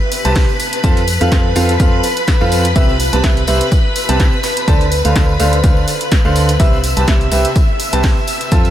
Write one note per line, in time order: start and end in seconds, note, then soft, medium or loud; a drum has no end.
0.00 6.61 B4 medium
0.00 6.61 B5 medium
0.12 open hi-hat loud
0.12 tambourine medium
0.25 0.46 C2 medium
0.25 0.48 C3 medium
0.25 0.48 C4 medium
0.25 0.48 G4 medium
0.25 0.48 B4 medium
0.25 0.48 A5 medium
0.25 closed hi-hat medium
0.25 tambourine soft
0.35 kick loud
0.35 snare loud
0.35 closed hi-hat medium
0.35 open hi-hat medium
0.35 tambourine soft
0.49 tambourine soft
0.60 open hi-hat medium
0.60 tambourine medium
0.73 closed hi-hat medium
0.73 tambourine soft
0.83 1.18 F2 medium
0.83 0.99 F3 medium
0.83 0.99 C4 medium
0.83 0.99 F4 medium
0.83 0.99 A4 medium
0.83 0.99 A5 loud
0.83 kick loud
0.83 closed hi-hat medium
0.83 tambourine medium
0.97 closed hi-hat soft
0.97 tambourine soft
1.07 open hi-hat loud
1.07 tambourine medium
1.21 1.30 F2 loud
1.21 1.30 F3 medium
1.21 1.30 C4 medium
1.21 1.30 F4 medium
1.21 1.30 A4 medium
1.21 1.30 F5 medium
1.21 closed hi-hat medium
1.21 tambourine soft
1.32 1.54 F2 medium
1.32 1.47 F3 medium
1.32 1.47 C4 medium
1.32 1.47 F4 medium
1.32 1.47 A4 medium
1.32 1.47 F5 medium
1.32 kick loud
1.32 snare loud
1.32 closed hi-hat soft
1.32 tambourine medium
1.56 1.78 F2 loud
1.56 1.71 F3 loud
1.56 1.71 C4 medium
1.56 1.71 F4 medium
1.56 1.71 A4 medium
1.56 1.71 F5 loud
1.56 open hi-hat medium
1.56 tambourine loud
1.56 tambourine medium
1.69 closed hi-hat medium
1.69 tambourine soft
1.80 2.01 F2 loud
1.80 2.03 F3 medium
1.80 2.03 C4 medium
1.80 2.03 F4 medium
1.80 2.03 A4 medium
1.80 2.03 F5 medium
1.80 kick loud
1.80 closed hi-hat soft
1.80 tambourine medium
2.03 open hi-hat loud
2.03 tambourine medium
2.16 closed hi-hat medium
2.16 tambourine soft
2.27 kick loud
2.27 snare loud
2.27 closed hi-hat medium
2.27 tambourine medium
2.41 2.74 F2 loud
2.41 2.64 F3 medium
2.41 2.64 C4 medium
2.41 2.64 F4 medium
2.41 2.64 A4 medium
2.41 2.64 F5 loud
2.41 tambourine soft
2.52 open hi-hat medium
2.52 tambourine medium
2.65 closed hi-hat medium
2.65 closed hi-hat soft
2.65 tambourine soft
2.76 3.10 C2 loud
2.76 2.91 C3 loud
2.76 2.91 C4 medium
2.76 2.91 G4 medium
2.76 2.91 B4 medium
2.76 2.91 E5 loud
2.76 kick loud
2.76 closed hi-hat medium
2.76 tambourine medium
2.89 tambourine soft
3.00 open hi-hat loud
3.00 tambourine medium
3.13 3.22 C2 loud
3.13 3.22 C3 medium
3.13 3.22 C4 medium
3.13 3.22 G4 medium
3.13 3.22 B4 medium
3.13 3.22 A5 medium
3.13 closed hi-hat medium
3.13 tambourine soft
3.24 3.39 C3 medium
3.24 3.39 C4 medium
3.24 3.39 G4 medium
3.24 3.39 E5 medium
3.24 kick loud
3.24 snare loud
3.24 closed hi-hat medium
3.24 tambourine medium
3.37 closed hi-hat soft
3.47 3.61 C2 loud
3.47 3.63 C3 medium
3.47 3.63 C4 medium
3.47 3.63 G4 medium
3.47 3.63 B4 medium
3.47 3.63 E5 loud
3.47 open hi-hat medium
3.47 tambourine medium
3.61 closed hi-hat medium
3.61 tambourine soft
3.72 kick loud
3.72 closed hi-hat medium
3.72 tambourine medium
3.96 open hi-hat loud
3.96 tambourine medium
4.08 4.30 C2 loud
4.08 4.32 C3 medium
4.08 4.32 C4 medium
4.08 4.32 G4 medium
4.08 4.32 B4 medium
4.08 4.32 A5 loud
4.08 closed hi-hat medium
4.08 tambourine soft
4.20 kick loud
4.20 snare loud
4.20 closed hi-hat medium
4.20 tambourine medium
4.20 tambourine soft
4.33 tambourine soft
4.43 snare loud
4.43 open hi-hat medium
4.43 tambourine medium
4.57 closed hi-hat medium
4.57 tambourine soft
4.68 5.02 D2 medium
4.68 4.83 D3 medium
4.68 4.83 D4 medium
4.68 4.83 A4 medium
4.68 4.83 C5 medium
4.68 4.83 A5 loud
4.68 kick loud
4.68 closed hi-hat medium
4.68 tambourine medium
4.81 closed hi-hat soft
4.81 tambourine soft
4.92 open hi-hat loud
4.92 tambourine medium
5.05 5.14 D2 loud
5.05 5.14 D3 medium
5.05 5.14 D4 medium
5.05 5.14 A4 medium
5.05 5.14 C5 medium
5.05 5.14 F5 medium
5.05 closed hi-hat medium
5.05 tambourine soft
5.15 5.38 D2 loud
5.15 kick loud
5.15 snare loud
5.15 closed hi-hat medium
5.15 tambourine medium
5.29 tambourine soft
5.40 5.62 D2 loud
5.40 5.55 D3 medium
5.40 5.55 D4 medium
5.40 5.55 A4 medium
5.40 5.55 C5 medium
5.40 5.55 F5 loud
5.40 open hi-hat medium
5.40 tambourine medium
5.53 closed hi-hat medium
5.53 tambourine soft
5.64 5.85 D2 medium
5.64 5.87 D3 medium
5.64 5.87 D4 medium
5.64 5.87 A4 medium
5.64 5.87 C5 medium
5.64 5.87 F5 medium
5.64 kick loud
5.64 closed hi-hat medium
5.64 tambourine soft
5.64 tambourine medium
5.76 tambourine soft
5.88 open hi-hat loud
5.88 tambourine medium
6.01 closed hi-hat medium
6.01 tambourine soft
6.12 kick loud
6.12 snare loud
6.12 closed hi-hat medium
6.12 tambourine medium
6.25 6.58 D2 loud
6.25 6.48 D3 medium
6.25 6.48 D4 medium
6.25 6.48 A4 medium
6.25 6.48 C5 medium
6.25 6.48 F5 loud
6.25 tambourine soft
6.36 open hi-hat medium
6.36 tambourine medium
6.49 closed hi-hat medium
6.49 closed hi-hat soft
6.49 tambourine soft
6.60 6.94 C2 loud
6.60 6.75 C3 loud
6.60 6.75 C4 loud
6.60 6.75 G4 medium
6.60 6.75 B4 medium
6.60 8.70 E5 medium
6.60 6.75 E5 loud
6.60 8.70 E6 medium
6.60 kick loud
6.60 closed hi-hat medium
6.60 tambourine medium
6.73 tambourine soft
6.84 open hi-hat loud
6.84 tambourine medium
6.96 7.06 C2 loud
6.96 7.06 C3 medium
6.96 7.06 C4 medium
6.96 7.06 G4 medium
6.96 7.06 B4 medium
6.96 7.06 A5 medium
6.96 closed hi-hat medium
6.96 tambourine soft
7.08 7.30 C2 loud
7.08 7.23 C3 medium
7.08 7.23 C4 medium
7.08 7.23 E5 medium
7.08 kick loud
7.08 snare loud
7.08 closed hi-hat medium
7.08 tambourine medium
7.21 closed hi-hat soft
7.31 7.45 C2 loud
7.31 7.47 C3 medium
7.31 7.47 C4 medium
7.31 7.47 G4 medium
7.31 7.47 B4 medium
7.31 7.47 E5 medium
7.31 open hi-hat medium
7.31 tambourine medium
7.45 closed hi-hat medium
7.45 tambourine soft
7.56 kick loud
7.56 closed hi-hat medium
7.56 tambourine medium
7.56 tambourine soft
7.80 open hi-hat loud
7.80 tambourine medium
7.93 8.14 C2 medium
7.93 8.16 C3 medium
7.93 8.16 C4 medium
7.93 8.16 G4 medium
7.93 8.16 B4 medium
7.93 8.16 A5 loud
7.93 closed hi-hat medium
7.93 tambourine soft
8.03 kick loud
8.03 snare loud
8.03 closed hi-hat medium
8.03 open hi-hat medium
8.03 tambourine medium
8.17 tambourine soft
8.27 open hi-hat medium
8.27 tambourine medium
8.40 closed hi-hat medium
8.40 tambourine soft
8.51 8.70 F2 loud
8.51 8.67 F3 medium
8.51 8.67 C4 medium
8.51 8.67 F4 medium
8.51 8.67 A4 medium
8.51 8.67 A5 loud
8.51 kick loud
8.51 closed hi-hat medium
8.51 tambourine soft
8.51 tambourine medium
8.65 closed hi-hat soft
8.65 tambourine soft